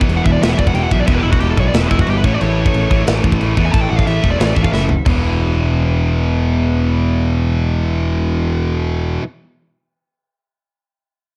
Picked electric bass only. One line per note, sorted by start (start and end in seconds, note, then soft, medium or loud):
0.09 0.20 E1 medium
0.26 0.37 E1 medium
0.42 0.53 E1 medium
0.59 0.70 E1 medium
0.74 0.86 E1 medium
0.91 1.03 B1 medium
1.08 1.20 E1 loud
1.25 1.36 E1 medium
1.42 1.53 E1 medium
1.57 1.69 B1 medium
1.74 1.86 E1 medium
1.91 2.03 E1 medium
2.07 2.24 G1 medium
2.24 2.36 A1 medium
2.42 2.64 A1 loud
2.75 2.86 A1 medium
2.91 3.03 A1 medium
3.08 3.19 A1 medium
3.24 3.36 A1 medium
3.41 3.52 A1 medium
3.57 3.69 E2 medium
3.74 3.85 A1 medium
3.91 4.02 A1 medium
4.07 4.19 A1 medium
4.24 4.35 E1 medium
4.40 4.52 A1 medium
4.56 4.68 A1 medium
4.73 4.96 F#1 medium
5.06 9.17 E1 medium